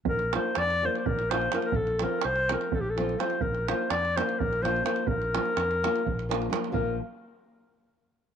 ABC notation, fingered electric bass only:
X:1
M:7/8
L:1/8
Q:1/4=126
K:Bb
V:1 name="Fingered electric bass" clef=bass
B,,,2 F,,2 B,,,3 | B,,,2 C,,2 B,,,3 | B,,,2 F,,2 B,,,3 | B,,,2 F,,2 B,,,3 |
B,,, z6 |]